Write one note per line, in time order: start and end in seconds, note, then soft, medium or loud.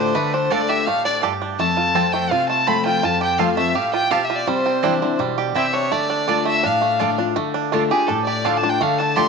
0.00 0.11 A2 medium
0.00 0.13 D3 medium
0.00 0.13 A3 medium
0.00 0.15 A3 medium
0.00 0.13 D4 medium
0.00 0.33 D4 medium
0.00 0.14 F4 medium
0.00 0.30 G4 medium
0.00 0.16 C5 medium
0.15 0.49 D3 loud
0.15 0.72 A3 medium
0.15 0.35 B4 medium
0.33 0.50 D4 medium
0.33 0.53 C5 medium
0.50 0.85 D3 medium
0.50 0.60 A3 medium
0.50 0.85 A3 medium
0.50 1.02 D4 medium
0.50 0.86 D4 medium
0.50 0.60 F4 medium
0.50 0.86 F4 medium
0.50 0.60 D5 medium
0.50 0.71 D5 medium
0.50 0.61 A5 loud
0.69 1.20 G4 medium
0.69 0.88 E5 medium
0.69 0.89 E5 medium
0.86 1.21 A2 medium
0.86 1.59 A3 medium
0.86 1.05 F5 medium
0.86 1.04 F5 medium
1.05 1.40 D4 medium
1.05 1.22 D5 medium
1.05 1.16 D5 medium
1.22 1.58 G2 medium
1.22 1.32 A3 medium
1.22 1.32 F4 medium
1.22 1.59 G4 medium
1.22 1.32 D5 loud
1.22 1.32 A5 loud
1.42 1.59 D4 medium
1.59 2.28 F2 medium
1.59 2.13 A3 medium
1.59 2.15 A5 medium
1.59 2.14 A5 loud
1.77 2.31 F4 medium
1.95 2.29 F3 medium
1.95 2.29 A3 medium
1.95 2.04 C4 medium
1.95 2.67 C4 medium
1.95 2.30 C4 medium
1.95 2.04 F4 medium
1.95 2.30 F4 medium
1.95 2.05 C5 medium
1.95 2.05 A5 loud
2.13 2.48 A3 medium
2.13 2.32 G5 medium
2.13 2.33 G5 medium
2.31 3.00 C3 medium
2.31 2.82 F4 medium
2.31 2.48 F5 medium
2.49 3.00 A3 medium
2.49 2.68 A5 medium
2.49 2.69 A5 medium
2.67 3.02 F3 medium
2.67 3.02 A3 medium
2.67 2.76 C4 medium
2.67 4.07 C4 medium
2.67 3.02 C4 medium
2.67 2.76 F4 medium
2.67 3.03 F4 medium
2.67 2.76 C5 loud
2.67 2.77 A5 loud
2.67 2.85 B5 medium
2.67 2.85 B5 loud
2.86 3.02 F4 medium
2.86 3.04 G5 medium
2.86 3.07 G5 loud
3.03 3.72 F2 loud
3.03 3.38 F4 medium
3.03 3.21 A5 medium
3.03 3.23 A5 loud
3.21 3.72 G4 medium
3.21 3.40 G5 medium
3.39 3.57 F3 medium
3.39 3.57 A3 medium
3.39 3.48 C4 medium
3.39 3.57 C4 medium
3.39 3.49 F4 medium
3.39 3.90 F4 medium
3.39 3.54 F4 medium
3.39 3.49 C5 medium
3.39 3.57 F5 medium
3.39 3.49 A5 loud
3.56 4.08 A3 medium
3.56 3.75 C4 medium
3.56 3.74 F4 medium
3.56 3.77 E5 medium
3.75 4.10 A2 medium
3.75 4.10 G4 medium
3.75 3.93 F5 medium
3.93 4.29 F4 medium
3.93 4.13 G5 loud
4.11 4.46 B2 medium
4.11 4.20 C4 medium
4.11 4.21 F4 medium
4.11 4.48 G4 medium
4.11 4.21 C5 medium
4.11 4.26 F5 medium
4.11 4.25 F5 medium
4.11 4.21 A5 loud
4.23 4.38 E5 medium
4.23 4.37 E5 medium
4.30 4.48 F4 medium
4.36 4.49 D5 medium
4.47 5.16 C3 loud
4.47 4.98 G3 medium
4.47 5.20 C5 medium
4.66 5.16 C4 medium
4.83 5.01 E3 medium
4.83 5.01 G3 medium
4.83 4.92 C4 medium
4.83 5.01 D4 medium
4.83 5.58 D4 medium
4.83 4.93 E4 medium
4.83 5.00 E4 medium
4.83 4.93 D5 medium
4.83 4.93 G5 loud
5.01 5.53 D3 medium
5.01 5.20 D4 soft
5.01 5.19 E4 medium
5.19 5.54 B2 medium
5.19 5.71 G3 medium
5.38 5.88 G4 medium
5.55 5.90 C3 medium
5.55 5.92 C4 medium
5.55 5.65 C4 medium
5.55 5.65 E4 loud
5.55 5.65 D5 medium
5.55 5.75 E5 medium
5.55 5.66 G5 medium
5.73 6.09 D4 medium
5.73 5.93 C#5 medium
5.73 5.94 C#5 medium
5.91 6.27 D3 loud
5.91 6.43 A3 medium
5.91 6.44 D5 medium
5.91 6.47 D5 medium
6.10 6.27 D4 soft
6.28 6.62 D3 medium
6.28 6.37 A3 medium
6.28 6.63 A3 medium
6.28 6.62 D4 medium
6.28 6.63 D4 medium
6.28 6.37 F4 medium
6.28 6.63 F4 medium
6.28 6.38 D5 loud
6.28 6.38 A5 loud
6.45 6.80 A3 medium
6.45 6.64 E5 medium
6.45 6.68 E5 loud
6.63 7.33 A2 medium
6.63 6.99 D4 medium
6.63 7.18 F5 medium
6.63 7.20 F5 medium
6.82 7.33 A3 medium
6.99 7.18 D3 medium
6.99 7.09 A3 medium
6.99 7.18 A3 medium
6.99 7.17 D4 medium
6.99 7.18 D4 medium
6.99 7.09 F4 medium
6.99 7.17 F4 medium
6.99 7.10 D5 medium
6.99 7.10 A5 loud
7.18 7.37 D4 medium
7.18 7.37 D4 soft
7.18 7.36 F4 medium
7.36 7.72 D3 loud
7.36 7.72 A3 medium
7.54 8.08 D4 medium
7.72 7.90 D3 medium
7.72 8.30 A3 medium
7.72 7.82 A3 medium
7.72 7.91 A3 medium
7.72 7.91 D4 medium
7.72 7.82 F4 medium
7.72 7.91 F4 medium
7.72 7.82 D5 medium
7.72 7.82 A5 medium
7.91 8.09 D4 medium
7.91 8.09 F4 medium
7.91 8.26 G4 medium
7.91 8.09 G#4 medium
8.07 8.78 A2 medium
8.07 8.45 D4 medium
8.07 8.24 A4 medium
8.07 8.26 A4 medium
8.25 8.78 G4 medium
8.25 8.47 D5 medium
8.25 8.46 D5 medium
8.45 8.63 D3 medium
8.45 8.54 A3 medium
8.45 8.63 A3 medium
8.45 8.63 D4 medium
8.45 8.54 F4 medium
8.45 8.61 F4 medium
8.45 8.54 D5 medium
8.45 8.59 F5 medium
8.45 8.55 A5 loud
8.57 8.71 A5 medium
8.57 8.72 A5 medium
8.62 8.99 D4 medium
8.62 8.81 D4 medium
8.62 8.80 F4 medium
8.69 8.84 G5 medium
8.81 9.15 D3 loud
8.81 9.28 A3 medium
8.81 9.00 F5 medium
8.81 9.03 F5 medium
8.98 9.28 D4 medium
8.98 9.18 A5 medium
8.98 9.20 A5 medium
9.16 9.28 D3 medium
9.16 9.26 A3 medium
9.16 9.28 A3 medium
9.16 9.28 D4 medium
9.16 9.26 F4 medium
9.16 9.28 F4 medium
9.16 9.28 G4 medium
9.16 9.27 D5 loud
9.16 9.27 A5 loud
9.16 9.28 C6 medium